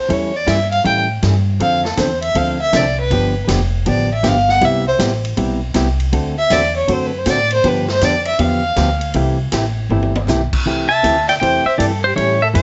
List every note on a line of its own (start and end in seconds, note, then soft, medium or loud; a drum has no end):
0.00 0.14 C5 medium
0.09 0.46 E2 medium
0.09 0.31 E3 medium
0.09 0.31 G3 medium
0.09 0.31 C#4 medium
0.09 0.31 E4 medium
0.09 0.32 A4 medium
0.09 0.38 C#5 medium
0.09 kick soft
0.09 ride medium
0.36 0.50 D5 medium
0.47 0.84 G2 medium
0.47 0.58 E3 medium
0.47 0.59 G3 medium
0.47 0.59 C#4 medium
0.47 0.59 E4 medium
0.47 0.59 A4 medium
0.47 0.71 E5 medium
0.47 kick soft
0.47 snare medium
0.47 hi-hat pedal medium
0.47 ride medium
0.71 0.84 F5 loud
0.71 ride soft
0.84 1.21 A2 medium
0.84 1.06 E3 medium
0.84 1.07 G3 medium
0.84 1.07 C#4 medium
0.84 1.07 E4 medium
0.84 1.07 A4 medium
0.84 1.00 G5 medium
0.84 kick soft
0.84 ride medium
1.22 1.59 G2 loud
1.22 1.34 E3 medium
1.22 1.34 G3 medium
1.22 1.34 C#4 medium
1.22 1.35 E4 medium
1.22 1.35 A4 medium
1.22 kick soft
1.22 snare medium
1.22 hi-hat pedal medium
1.22 ride medium
1.60 1.96 F2 medium
1.60 1.82 D3 medium
1.60 1.82 F3 medium
1.60 1.83 C4 medium
1.60 1.82 D4 medium
1.60 1.83 A4 medium
1.60 1.84 F5 medium
1.60 kick soft
1.60 ride medium
1.85 2.01 A4 medium
1.85 snare medium
1.97 2.34 E2 medium
1.97 2.09 D3 medium
1.97 2.09 F3 medium
1.97 2.10 C4 medium
1.97 2.10 D4 medium
1.97 2.10 A4 medium
1.97 2.22 C5 medium
1.97 kick soft
1.97 snare medium
1.97 hi-hat pedal medium
1.97 ride medium
2.22 2.38 E5 medium
2.22 ride soft
2.35 2.72 D2 medium
2.35 2.58 D3 soft
2.35 2.58 F3 medium
2.35 2.58 C4 medium
2.35 2.58 D4 medium
2.35 2.58 A4 medium
2.35 2.61 F5 medium
2.35 kick soft
2.35 ride medium
2.61 2.78 E5 medium
2.73 3.09 C2 medium
2.73 2.85 D3 medium
2.73 2.85 F3 medium
2.73 2.85 C4 medium
2.73 2.85 D4 medium
2.73 2.85 A4 medium
2.73 2.99 D5 medium
2.73 kick soft
2.73 snare medium
2.73 hi-hat pedal soft
2.73 ride medium
3.00 3.46 B4 loud
3.11 3.47 G1 medium
3.11 3.33 D3 medium
3.11 3.34 F3 medium
3.11 3.34 B3 medium
3.11 3.34 D4 medium
3.11 3.34 G4 medium
3.11 kick soft
3.11 ride medium
3.48 3.85 F1 medium
3.48 3.60 D3 medium
3.48 3.60 F3 medium
3.48 3.60 B3 medium
3.48 3.60 D4 medium
3.48 3.60 G4 medium
3.48 kick soft
3.48 snare medium
3.48 hi-hat pedal medium
3.48 ride medium
3.86 4.23 A1 medium
3.86 4.08 D3 medium
3.86 4.08 F3 medium
3.86 4.09 B3 medium
3.86 4.09 D4 medium
3.86 4.09 G4 medium
3.86 4.11 D5 medium
3.86 kick soft
3.86 ride medium
4.14 4.29 E5 medium
4.23 4.61 G1 loud
4.23 4.35 D3 medium
4.23 4.35 F3 medium
4.23 4.36 B3 medium
4.23 4.36 D4 medium
4.23 4.36 G4 medium
4.23 kick soft
4.23 snare medium
4.23 hi-hat pedal medium
4.23 ride medium
4.28 4.51 F5 medium
4.49 4.66 F#5 loud
4.49 snare soft
4.61 4.98 C2 medium
4.61 4.84 C3 medium
4.61 4.84 G3 medium
4.61 4.84 B3 medium
4.61 4.84 E4 medium
4.61 4.84 G4 medium
4.61 4.87 E5 medium
4.61 kick soft
4.61 ride medium
4.87 4.95 C5 loud
4.99 5.36 A1 medium
4.99 5.11 C3 medium
4.99 5.11 G3 medium
4.99 5.11 B3 medium
4.99 5.11 E4 medium
4.99 5.12 G4 medium
4.99 kick soft
4.99 snare medium
4.99 hi-hat pedal medium
4.99 ride medium
5.25 ride medium
5.37 5.74 B1 medium
5.37 5.59 C3 medium
5.37 5.59 G3 medium
5.37 5.60 B3 medium
5.37 5.60 E4 medium
5.37 5.60 G4 medium
5.37 kick soft
5.37 ride medium
5.74 6.12 C2 medium
5.74 5.86 C3 medium
5.74 5.87 G3 medium
5.74 5.87 B3 medium
5.74 5.87 E4 medium
5.74 5.87 G4 medium
5.74 kick soft
5.74 snare medium
5.74 hi-hat pedal medium
5.74 ride medium
6.00 ride soft
6.13 6.50 D2 medium
6.13 6.35 D3 medium
6.13 6.35 A3 medium
6.13 6.35 C4 medium
6.13 6.35 F#4 medium
6.13 6.36 A4 medium
6.13 kick soft
6.13 ride medium
6.38 6.54 E5 loud
6.50 6.87 E2 medium
6.50 6.63 D3 medium
6.50 6.63 A3 medium
6.50 6.63 C4 medium
6.50 6.63 F#4 medium
6.50 6.63 A4 medium
6.50 6.76 D5 medium
6.50 kick soft
6.50 snare medium
6.50 hi-hat pedal medium
6.50 ride medium
6.76 6.93 C#5 medium
6.88 7.25 F#2 medium
6.88 7.10 D3 medium
6.88 7.11 A3 medium
6.88 7.11 C4 medium
6.88 7.11 F#4 medium
6.88 7.11 A4 medium
6.88 kick soft
6.88 ride medium
6.92 7.07 C5 medium
7.06 7.20 B4 medium
7.18 7.31 C5 medium
7.26 7.63 A2 loud
7.26 7.38 D3 medium
7.26 7.38 A3 medium
7.26 7.38 C4 medium
7.26 7.38 F#4 medium
7.26 7.38 A4 medium
7.26 7.53 D5 loud
7.26 kick soft
7.26 snare medium
7.26 hi-hat pedal medium
7.26 ride medium
7.51 7.69 C5 medium
7.51 ride soft
7.64 8.01 G2 medium
7.64 7.86 D3 medium
7.64 7.86 F3 medium
7.64 7.86 B3 medium
7.64 7.87 D4 medium
7.64 7.87 G4 medium
7.64 7.90 B4 medium
7.64 kick soft
7.64 ride medium
7.88 8.06 C5 loud
7.88 snare medium
8.01 8.38 F2 medium
8.01 8.14 D3 medium
8.01 8.14 F3 medium
8.01 8.14 B3 medium
8.01 8.14 D4 medium
8.01 8.14 G4 medium
8.01 8.27 D5 loud
8.01 kick soft
8.01 snare medium
8.01 hi-hat pedal medium
8.01 ride medium
8.25 8.42 E5 loud
8.25 ride medium
8.39 8.76 E2 medium
8.39 8.61 D3 medium
8.39 8.62 F3 medium
8.39 8.62 B3 medium
8.39 8.62 D4 medium
8.39 8.62 G4 medium
8.39 9.15 F5 medium
8.39 kick soft
8.39 ride medium
8.76 9.14 D2 loud
8.76 8.89 D3 medium
8.76 8.89 F3 medium
8.76 8.89 B3 medium
8.76 8.89 D4 medium
8.76 8.89 G4 medium
8.76 kick soft
8.76 snare medium
8.76 hi-hat pedal medium
8.76 ride medium
9.01 ride soft
9.14 9.51 C2 medium
9.14 9.37 C3 medium
9.14 9.37 E3 medium
9.14 9.37 A3 medium
9.14 9.37 E4 medium
9.14 9.38 G4 medium
9.14 kick soft
9.14 ride medium
9.52 9.89 A1 medium
9.52 9.64 C3 medium
9.52 9.64 E3 medium
9.52 9.65 A3 medium
9.52 9.65 E4 medium
9.52 9.65 G4 medium
9.52 kick soft
9.52 snare medium
9.52 hi-hat pedal medium
9.52 ride medium
9.89 10.26 G1 medium
9.89 10.13 C3 medium
9.89 10.13 E3 medium
9.89 10.13 A3 medium
9.89 10.13 E4 medium
9.89 10.13 G4 medium
9.89 high tom medium
10.03 high tom medium
10.15 high tom medium
10.27 10.50 B1 loud
10.27 10.40 C3 medium
10.27 10.40 E3 medium
10.27 10.40 A3 medium
10.27 10.40 E4 medium
10.27 10.41 G4 medium
10.27 snare medium
10.27 hi-hat pedal medium
10.53 muted upright bass stroke soft
10.53 kick medium
10.53 crash medium
10.66 11.03 C2 medium
10.66 10.88 C3 medium
10.66 10.88 E3 medium
10.66 10.88 A3 medium
10.66 10.88 E4 medium
10.66 10.89 G4 medium
10.66 kick soft
10.89 11.26 E5 medium
10.89 11.29 A5 loud
11.03 11.40 D2 medium
11.03 11.15 C3 medium
11.03 11.15 E3 medium
11.03 11.15 A3 medium
11.03 11.16 E4 medium
11.03 11.16 G4 medium
11.03 kick soft
11.03 hi-hat pedal medium
11.03 ride medium
11.28 11.34 D5 medium
11.28 11.34 G5 medium
11.28 snare soft
11.28 ride medium
11.40 11.65 E2 medium
11.40 11.64 C3 medium
11.40 11.64 E3 medium
11.40 11.64 A3 medium
11.40 11.64 E4 medium
11.40 11.64 G4 medium
11.40 11.65 C5 medium
11.40 11.66 G5 loud
11.40 kick soft
11.40 ride medium
11.65 11.78 C5 medium
11.65 11.80 E5 medium
11.65 muted upright bass stroke soft
11.78 12.16 G2 medium
11.78 11.90 C3 medium
11.78 11.91 E3 medium
11.78 11.91 A3 medium
11.78 11.91 E4 medium
11.78 11.91 G4 medium
11.78 12.00 A4 medium
11.78 11.85 D5 medium
11.78 kick soft
11.78 hi-hat pedal soft
11.78 ride medium
12.04 12.17 G4 medium
12.04 12.16 C5 medium
12.16 12.54 A2 medium
12.16 12.38 E3 medium
12.16 12.38 G3 medium
12.16 12.39 C#4 medium
12.16 12.39 E4 medium
12.16 12.42 G4 medium
12.16 12.39 A4 medium
12.16 12.42 C#5 loud
12.16 kick soft
12.16 ride medium
12.42 12.48 A4 medium
12.42 12.47 E5 medium
12.54 12.62 F2 loud
12.54 12.62 E3 medium
12.54 12.62 G3 medium
12.54 12.62 C#4 medium
12.54 12.62 E4 medium
12.54 12.62 G4 medium
12.54 12.62 A4 medium
12.54 12.62 C#5 medium
12.54 kick soft
12.54 hi-hat pedal medium
12.54 ride medium